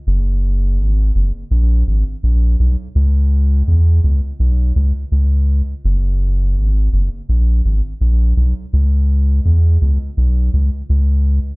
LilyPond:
\new Staff \with { instrumentName = "Sub bass" } { \clef bass \time 4/4 \key fis \mixolydian \tempo 4 = 83 fis,,4 gis,,8 fis,,16 r16 ais,,8 gis,,16 r16 ais,,8 b,,16 r16 | cis,4 e,8 cis,16 r16 b,,8 cis,16 r16 cis,8. r16 | fis,,4 gis,,8 fis,,16 r16 ais,,8 gis,,16 r16 ais,,8 b,,16 r16 | cis,4 e,8 cis,16 r16 b,,8 cis,16 r16 cis,8. r16 | }